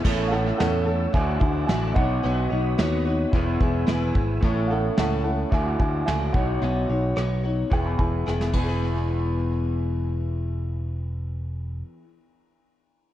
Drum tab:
CC |x---------------|----------------|----------------|----------------|
RD |----------------|----------------|----------------|--------------x-|
HH |----o---o-------|o---o---o---o---|o---o---o---o---|o---o---o-------|
SD |----o-------o---|----o-------o---|----o-------o---|----r-------oo--|
BD |o-------o-o---o-|--------o-o---o-|o-------o-o---o-|--------o-o---o-|

CC |----------------|----------------|
RD |----------------|----------------|
HH |----------------|----------------|
SD |----------------|----------------|
BD |----------------|----------------|